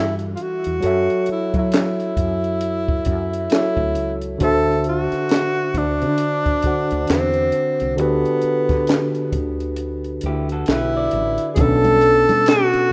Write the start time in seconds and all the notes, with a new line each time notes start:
Already playing: G2 E3 G3 E4 F#4 A4 E5
0.00 E4
0.19 closed hi-hat
0.36 F4, closed hi-hat
0.43 F#4
0.64 E2, closed hi-hat
0.80 F#2 F#3 F#4 A4, closed hi-hat
0.85 C#5 E5
1.10 closed hi-hat
1.26 muted fretless electric bass stroke, closed hi-hat
1.32 E4
1.54 F#3, kick, closed hi-hat
1.59 E4
1.72 snare, clap, closed hi-hat
2.00 closed hi-hat
2.17 F#2, kick, closed hi-hat
2.44 closed hi-hat
2.61 closed hi-hat
2.88 kick
3.05 F#2, kick, closed hi-hat
3.33 closed hi-hat
3.50 F#3 F#4 A4 C#5 E5, snare, clap, closed hi-hat
3.55 E4
3.77 D2, kick
3.95 C#2, closed hi-hat
4.21 closed hi-hat
4.38 D2 D3 D4 F#4, kick, closed hi-hat
4.43 A4 C5 E5
4.69 snare
4.84 closed hi-hat
4.89 F#4
5.12 muted fretless electric bass stroke, snare, closed hi-hat
5.29 snare, clap, closed hi-hat
5.74 D2 D4, kick, closed hi-hat
6.02 D3, closed hi-hat
6.18 closed hi-hat
6.46 kick, closed hi-hat
6.62 D3 D4 F#4 C5, muted fretless electric bass stroke, kick, closed hi-hat
6.67 F#5
6.91 D2, closed hi-hat
7.07 E2, snare, clap, closed hi-hat
7.12 C4
7.34 closed hi-hat
7.52 closed hi-hat
7.80 C2, closed hi-hat
7.96 D2 D3 D4 F#4 G4, closed hi-hat
8.00 B3 A4 B4
8.25 closed hi-hat
8.42 muted fretless electric bass stroke, closed hi-hat
8.69 D3, kick, snare, closed hi-hat
8.87 snare, clap, closed hi-hat
9.15 closed hi-hat
9.32 D2, kick, closed hi-hat
9.60 closed hi-hat
9.76 closed hi-hat
10.04 closed hi-hat
10.21 D2, closed hi-hat
10.26 E4 G4
10.49 F#4 A4, closed hi-hat
10.66 B1, snare, clap, closed hi-hat
10.70 E4 G4 B4
10.97 B4 D5
11.11 A1, closed hi-hat
11.38 closed hi-hat
11.55 B1 B2 B3 C#4 G#4, kick, closed hi-hat, muted conga, low conga
11.60 D4 A4
11.84 closed hi-hat, high conga
12.01 closed hi-hat, muted conga
12.29 snare, closed hi-hat, high conga
12.46 F#4, snare, clap, closed hi-hat
12.74 muted fretless electric bass stroke, closed hi-hat